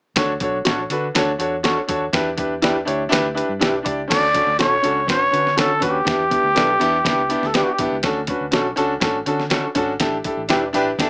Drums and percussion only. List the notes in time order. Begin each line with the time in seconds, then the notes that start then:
0.16 kick, snare, closed hi-hat
0.40 kick, closed hi-hat
0.65 snare, closed hi-hat
0.90 closed hi-hat
1.15 snare, closed hi-hat
1.40 closed hi-hat
1.64 snare, closed hi-hat
1.89 kick, closed hi-hat
2.13 kick, snare, closed hi-hat
2.38 kick, closed hi-hat
2.62 snare, closed hi-hat
2.88 closed hi-hat
3.12 snare, closed hi-hat
3.37 closed hi-hat
3.61 snare, closed hi-hat
3.86 kick, closed hi-hat
4.10 kick, snare, closed hi-hat, crash
4.34 kick, closed hi-hat
4.59 snare, closed hi-hat
4.84 closed hi-hat
5.08 kick, snare, closed hi-hat
5.34 closed hi-hat
5.47 snare
5.58 snare, closed hi-hat
5.82 kick, closed hi-hat
6.07 kick, snare, closed hi-hat
6.31 kick, closed hi-hat
6.56 snare, closed hi-hat
6.81 closed hi-hat
7.05 kick, snare, closed hi-hat
7.30 closed hi-hat
7.43 snare
7.54 snare, closed hi-hat
7.79 kick, closed hi-hat
8.03 kick, snare, closed hi-hat
8.27 kick, closed hi-hat
8.52 snare, closed hi-hat
8.77 closed hi-hat
9.01 kick, snare, closed hi-hat
9.26 closed hi-hat
9.40 snare
9.50 snare, closed hi-hat
9.75 kick, closed hi-hat
10.00 kick, snare, closed hi-hat
10.24 kick, closed hi-hat
10.49 snare, closed hi-hat
10.74 closed hi-hat
10.99 kick, snare, closed hi-hat